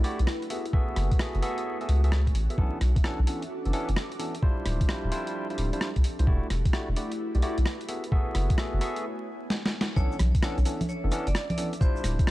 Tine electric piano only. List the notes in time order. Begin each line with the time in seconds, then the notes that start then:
0.04 A3 E4 F#4 G4 D5
0.50 B3 F#4 G#4 A4 E5
0.73 B3 F#4 G#4 A4 E5
1.20 B3 F#4 G#4 A4 E5
1.42 B3 F#4 G#4 A4 E5
1.81 B3 F#4 G#4 A4 E5
2.04 B3 F#4 G#4 A4 E5
2.50 B3 F#4 G#4 A4 E5
2.58 E3 B3 C#4 D4 A4
3.04 E3 B3 C#4 D4 A4
3.27 E3 B3 C#4 D4 A4
3.65 E3 B3 C#4 D4 A4
3.73 E3 B3 C#4 D4 A4
4.19 E3 B3 C#4 D4 A4
4.43 G3 D4 E4 F4 C5
4.89 G3 D4 E4 F4 C5
5.12 G3 D4 E4 F4 C5
5.50 G3 D4 E4 F4 C5
5.73 G3 D4 E4 F4 C5
6.19 G3 D4 E4 F4 C5
6.27 A3 E4 F#4 G4 D5
6.73 A3 E4 F#4 G4 D5
6.96 A3 E4 F#4 G4 D5
7.35 A3 E4 F#4 G4 D5
7.43 A3 E4 F#4 G4 D5
7.89 B3 F#4 G#4 A4 E5
8.12 B3 F#4 G#4 A4 E5
8.58 B3 F#4 G#4 A4 E5
8.81 B3 F#4 G#4 A4 E5
9.97 E3 B3 C#4 D4 A4
10.43 E3 B3 C#4 D4 A4
10.66 E3 B3 C#4 D4 A4
11.04 E3 B3 C#4 D4 A4
11.12 E3 B3 C#4 D4 A4
11.58 E3 B3 C#4 D4 A4
11.81 G3 D4 E4 F4 C5
12.27 G3 D4 E4 F4 C5